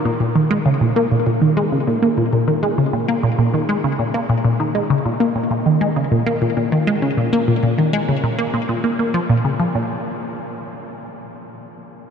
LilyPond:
\new Staff \with { instrumentName = "Synth arpeggio sound" } { \clef bass \time 4/4 \key bes \minor \tempo 4 = 99 bes,16 bes,16 ees16 aes16 des16 bes,16 bes16 bes,16 bes,16 ees16 aes16 des16 bes,16 bes16 bes,16 bes,16 | ees16 aes16 des16 bes,16 bes16 bes,16 bes,16 ees16 aes16 des16 bes,16 bes16 bes,16 bes,16 ees16 aes16 | des16 bes,16 bes16 bes,16 bes,16 ees16 aes16 des16 bes,16 bes16 bes,16 bes,16 ees16 aes16 des16 bes,16 | bes16 bes,16 bes,16 ees16 aes16 des16 bes,16 bes16 bes,16 bes,16 bes16 bes16 f16 bes,16 des16 f16 |
bes,8 r2. r8 | }